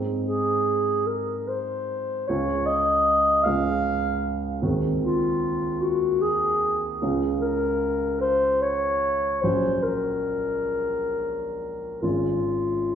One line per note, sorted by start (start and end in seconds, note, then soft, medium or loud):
0.00 2.24 G#2 soft
0.00 2.24 G#3 soft
0.00 2.25 C4 soft
0.00 2.24 D#4 soft
0.26 1.08 G#4 medium
1.06 1.50 A#4 medium
1.48 2.29 C5 medium
2.27 3.42 C#2 soft
2.27 3.42 G#3 soft
2.27 3.42 C#4 soft
2.27 3.42 F4 soft
2.27 2.68 C#5 medium
2.66 3.45 D#5 medium
3.43 4.60 C#2 soft
3.43 4.60 G#3 soft
3.43 4.60 C#4 soft
3.43 4.60 F4 soft
3.43 4.62 F5 medium
4.62 6.97 D#2 soft
4.62 6.97 G#3 soft
4.62 6.97 C4 soft
4.62 6.97 F#4 soft
5.02 5.83 F4 medium
5.81 6.23 F#4 medium
6.21 7.01 G#4 medium
7.02 9.40 C#2 soft
7.02 9.39 G#3 soft
7.02 9.39 C#4 soft
7.02 9.39 F4 soft
7.41 8.17 A#4 medium
8.21 8.63 C5 medium
8.61 9.43 C#5 medium
9.42 11.99 A#1 soft
9.42 11.99 F#3 soft
9.42 11.99 C#4 soft
9.42 11.99 F#4 soft
9.42 9.85 C5 medium
9.83 12.02 A#4 medium
12.02 12.95 G#1 soft
12.02 12.95 G#3 soft
12.02 12.95 C#4 soft
12.02 12.95 F4 medium
12.02 12.95 F4 soft